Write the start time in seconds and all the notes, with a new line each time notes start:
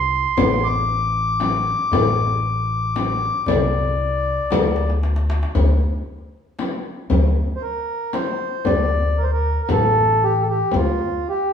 Already playing: C2 C6
0.37 A1, darbuka dum, frame drum
0.63 D6, darbuka ka
1.40 darbuka tek, frame drum
1.92 A1, darbuka dum, frame drum
2.45 darbuka ka
2.96 darbuka tek, frame drum
3.46 C2 D5, darbuka dum, frame drum
4.51 D2, darbuka tek, frame drum
4.64 darbuka ka
4.76 darbuka tek
4.90 darbuka ka
5.03 darbuka tek
5.16 darbuka ka
5.30 darbuka tek
5.43 darbuka ka
5.55 D2, frame drum, darbuka dum
5.82 darbuka ka
6.59 darbuka tek, frame drum
7.10 D2, frame drum, darbuka dum
7.56 C5
7.62 A#4, darbuka ka
8.13 C5, darbuka tek, frame drum
8.65 D2 D5, frame drum, darbuka dum
9.18 A#4
9.23 C5
9.33 A#4
9.63 A#4
9.69 A1 A4, frame drum, darbuka dum
10.24 G4
10.41 A4
10.49 G4
10.71 D2, frame drum, darbuka dum
10.76 F4
11.00 darbuka ka
11.29 G4